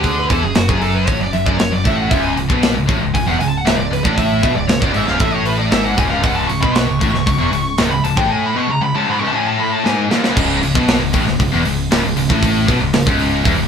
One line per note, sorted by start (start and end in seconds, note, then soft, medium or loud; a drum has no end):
0.00 0.27 D2 medium
0.00 0.29 D3 loud
0.00 open hi-hat medium
0.04 0.17 G#4 medium
0.04 kick medium
0.19 0.31 B4 medium
0.29 0.42 E2 medium
0.29 0.42 E3 loud
0.29 0.43 A4 loud
0.29 kick loud
0.29 open hi-hat medium
0.42 0.55 F#1 medium
0.42 0.55 F#2 medium
0.42 0.56 G#4 medium
0.55 0.68 F#1 medium
0.55 0.67 F#2 medium
0.55 0.69 F#4 medium
0.55 snare loud
0.55 open hi-hat medium
0.68 1.05 F#1 medium
0.68 1.07 F#2 medium
0.68 0.81 G#4 medium
0.68 kick loud
0.82 0.94 A4 medium
0.82 open hi-hat soft
0.95 1.07 B4 medium
1.07 1.20 A1 medium
1.07 1.20 A2 loud
1.07 1.21 C#5 medium
1.07 kick loud
1.07 open hi-hat medium
1.21 1.33 F#1 medium
1.21 1.32 F#2 medium
1.21 1.33 D5 medium
1.33 1.46 F#1 medium
1.33 1.45 F#2 medium
1.33 1.46 E5 loud
1.33 open hi-hat soft
1.46 1.58 F#1 medium
1.46 1.58 F#2 medium
1.46 1.58 D5 medium
1.46 kick loud
1.58 1.71 F#1 medium
1.58 1.70 F#2 medium
1.58 1.73 C#5 medium
1.58 snare loud
1.58 open hi-hat medium
1.71 1.84 F#1 medium
1.71 1.84 F#2 medium
1.71 1.85 D5 loud
1.84 2.09 A1 medium
1.84 2.09 A2 medium
1.84 1.97 E5 loud
1.84 kick loud
1.84 open hi-hat medium
1.97 2.10 F#5 loud
2.10 2.35 C#1 medium
2.10 2.35 C#2 loud
2.10 2.23 E5 medium
2.10 kick loud
2.10 open hi-hat medium
2.23 2.31 G#5 medium
2.36 2.49 C#1 medium
2.36 2.48 C#2 medium
2.36 open hi-hat medium
2.49 2.74 B1 medium
2.49 2.74 B2 medium
2.49 kick loud
2.63 snare loud
2.63 open hi-hat medium
2.75 2.87 C#1 medium
2.75 2.87 C#2 medium
2.87 3.01 A1 medium
2.87 3.00 A2 loud
2.87 kick loud
2.87 open hi-hat soft
3.02 3.14 C#1 medium
3.02 3.13 C#2 medium
3.14 3.27 C#1 medium
3.14 3.27 C#2 medium
3.14 3.27 G#5 medium
3.14 kick medium
3.14 open hi-hat medium
3.27 3.39 E1 medium
3.27 3.39 E2 loud
3.27 3.39 F#5 medium
3.40 3.61 C#2 medium
3.40 3.48 G#5 loud
3.40 open hi-hat medium
3.48 3.57 A5 loud
3.57 3.66 F#5 medium
3.65 3.79 C#1 medium
3.65 3.77 C#2 loud
3.65 3.77 E5 medium
3.65 snare loud
3.65 open hi-hat medium
3.78 3.91 C#1 medium
3.78 3.90 C#2 medium
3.78 3.91 D5 medium
3.91 4.04 C#1 medium
3.91 4.04 C#2 medium
3.91 4.05 B4 medium
3.91 open hi-hat medium
4.04 4.41 A1 loud
4.04 4.42 A2 loud
4.04 4.17 D5 medium
4.04 kick loud
4.17 4.53 E5 loud
4.17 kick loud
4.17 open hi-hat medium
4.43 4.55 B1 medium
4.43 4.54 B2 loud
4.43 kick loud
4.43 open hi-hat medium
4.55 4.69 C#1 medium
4.55 4.67 C#2 medium
4.55 4.68 D5 medium
4.68 4.82 C#1 medium
4.68 4.79 C#2 medium
4.68 4.81 C#5 medium
4.68 snare loud
4.68 open hi-hat medium
4.81 4.94 C#1 medium
4.81 4.93 C#2 medium
4.81 4.96 D5 medium
4.81 kick loud
4.93 5.07 G#1 loud
4.93 5.06 G#2 medium
4.93 5.07 E5 medium
4.93 open hi-hat medium
5.06 5.20 C#1 medium
5.06 5.18 C#2 loud
5.06 5.20 F5 loud
5.06 snare soft
5.19 5.68 A1 medium
5.19 5.70 A2 loud
5.19 5.35 E5 medium
5.19 kick loud
5.19 open hi-hat medium
5.35 5.46 C#5 medium
5.46 5.58 B4 medium
5.46 open hi-hat medium
5.59 5.71 D5 medium
5.71 5.96 G#1 medium
5.71 5.97 G#2 loud
5.71 5.84 E5 loud
5.71 snare loud
5.71 open hi-hat medium
5.84 5.97 F#5 medium
5.97 6.10 D#1 medium
5.97 6.09 D#2 loud
5.97 6.10 G#5 loud
5.97 kick loud
5.97 open hi-hat medium
6.10 6.23 C#1 loud
6.10 6.22 C#2 loud
6.10 6.23 F5 medium
6.23 6.48 C#1 medium
6.23 6.48 C#2 loud
6.23 6.35 F#5 medium
6.23 kick loud
6.23 open hi-hat medium
6.36 6.49 A5 medium
6.47 6.62 C#1 medium
6.47 6.61 C#2 medium
6.47 6.61 C#6 loud
6.47 open hi-hat medium
6.61 6.87 B1 medium
6.61 6.86 B2 medium
6.61 6.75 B5 loud
6.61 kick loud
6.75 7.78 C#6 loud
6.75 snare loud
6.75 open hi-hat medium
6.87 7.00 C#1 medium
6.87 7.00 C#2 medium
7.00 7.13 A1 loud
7.00 7.13 A2 loud
7.00 kick medium
7.00 open hi-hat medium
7.13 7.26 C#1 medium
7.13 7.25 C#2 medium
7.13 snare soft
7.26 7.38 C#1 medium
7.26 7.38 C#2 medium
7.26 kick medium
7.26 open hi-hat medium
7.38 7.51 E1 medium
7.38 7.51 E2 loud
7.52 7.73 C#2 medium
7.52 open hi-hat medium
7.78 7.91 C#1 medium
7.78 7.90 C#2 loud
7.78 snare loud
7.78 open hi-hat medium
7.91 8.04 C#1 medium
7.91 8.03 C#2 medium
7.91 8.04 B5 loud
8.04 8.17 C#1 medium
8.04 8.16 C#2 medium
8.04 8.17 A5 medium
8.04 open hi-hat medium
8.17 8.29 A1 loud
8.17 8.55 A2 loud
8.17 8.30 G5 medium
8.17 kick loud
8.31 8.43 G#5 medium
8.46 8.57 B5 medium
8.56 8.67 B2 loud
8.56 8.69 C#6 loud
8.68 8.80 C#2 medium
8.68 8.82 A#5 medium
8.81 8.94 C#2 medium
8.81 8.96 B5 loud
8.95 9.07 C#2 medium
8.95 9.08 A5 medium
9.08 9.20 G#2 loud
9.08 9.19 B5 loud
9.19 9.33 C#2 loud
9.19 9.26 C#6 medium
9.28 9.35 A5 loud
9.33 9.84 A2 loud
9.33 9.47 G#5 medium
9.47 9.59 A5 medium
9.60 9.73 B5 loud
9.73 9.85 A5 medium
9.85 10.10 G#2 loud
9.85 10.01 G#5 loud
9.85 snare medium
10.10 10.23 D#2 loud
10.10 snare medium
10.23 10.35 C#2 loud
10.23 snare medium
10.37 10.61 C#1 loud
10.37 10.61 C#2 loud
10.37 kick loud
10.37 crash loud
10.62 10.75 C#1 medium
10.62 10.74 C#2 medium
10.62 open hi-hat medium
10.75 10.99 B1 medium
10.75 11.00 B2 loud
10.75 kick loud
10.88 snare loud
10.88 open hi-hat medium
11.00 11.13 C#1 medium
11.00 11.13 C#2 medium
11.13 11.26 A1 loud
11.13 11.26 A2 loud
11.13 kick loud
11.13 open hi-hat medium
11.27 11.39 C#1 medium
11.27 11.38 C#2 medium
11.27 snare soft
11.40 11.52 C#1 medium
11.40 11.51 C#2 medium
11.40 kick medium
11.40 open hi-hat medium
11.52 11.65 E1 loud
11.52 11.64 E2 loud
11.65 11.89 C#1 medium
11.65 11.86 C#2 medium
11.65 open hi-hat medium
11.91 12.03 C#1 medium
11.91 12.03 C#2 loud
11.91 snare loud
11.91 open hi-hat medium
12.04 12.16 C#1 medium
12.04 12.15 C#2 medium
12.16 12.29 C#1 medium
12.16 12.29 C#2 medium
12.16 open hi-hat medium
12.29 12.66 A1 loud
12.29 12.67 A2 loud
12.29 kick loud
12.43 kick loud
12.43 open hi-hat medium
12.67 12.80 B1 loud
12.67 12.80 B2 loud
12.67 kick loud
12.67 open hi-hat medium
12.81 12.93 C#1 medium
12.81 12.92 C#2 medium
12.93 13.06 C#1 medium
12.93 13.05 C#2 medium
12.93 snare loud
12.93 open hi-hat medium
13.06 13.43 C#1 loud
13.06 13.45 C#2 loud
13.06 kick loud
13.19 open hi-hat medium
13.45 13.57 E1 loud
13.45 13.58 E2 loud
13.45 kick loud
13.45 open hi-hat medium
13.58 13.68 C#1 medium
13.58 13.68 C#2 medium